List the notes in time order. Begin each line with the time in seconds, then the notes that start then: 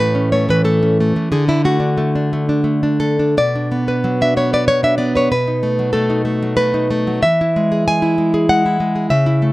Already playing: A2 E3 A3 C#4
0.00 B4
0.15 C#4
0.32 A3 C#5
0.49 E3 B4
0.64 A3 A4
0.83 C#4
1.00 A3
1.16 E3
1.32 D3 G#4
1.48 D4 E4
1.65 A3 F#4
1.80 D4
1.98 A3
2.15 D4
2.33 A3
2.49 D4
2.64 A3
2.83 D4
3.00 A3 A4
3.19 D4
3.37 B2 D5
3.56 D4
3.72 B3
3.88 B4
4.04 F#3
4.21 D4 E5
4.37 B3 C#5
4.53 B4 D5
4.68 F#3 C#5
4.83 D4 E5
4.98 B3 D5
5.15 B4 C#5
5.32 B2 B4
5.48 D#4
5.63 A3
5.79 F#3
5.93 A3 A4
6.10 D#4
6.25 A3
6.43 F#3
6.57 A3 B4
6.74 D#4
6.91 A3
7.07 F#3
7.23 E3 E5
7.41 E4
7.56 G#3
7.72 G#4
7.88 G#3 G#5
8.02 E4
8.18 G#3
8.34 G#4
8.49 G#3 F#5
8.66 E4
8.80 G#3
8.96 G#4
9.10 C#3 E5
9.26 E4
9.42 A3